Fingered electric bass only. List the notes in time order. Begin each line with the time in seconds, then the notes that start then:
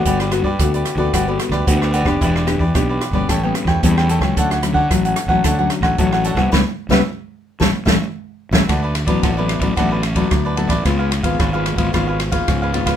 0.06 G1
0.42 G2
0.59 D2
0.95 D2
1.13 G1
1.50 D2
1.67 D2
2.03 F1
2.21 E1
2.57 E2
2.75 B1
3.11 G1
3.29 A1
3.65 E2
3.83 E2
4.19 C#2
4.37 D2
4.73 D3
4.91 A1
5.27 A1
5.44 D2
5.81 A1
5.99 A1
6.35 C2
6.53 C#2
6.89 C#2
7.61 A1
7.86 A1
8.51 A1
8.69 D2
9.05 A1
9.23 A1
9.59 A1
9.77 A1
10.31 D2
10.68 A1
10.85 C#2
11.22 G#1
11.40 G#1
11.76 G#1
11.94 G#1
12.48 C#2
12.84 C#2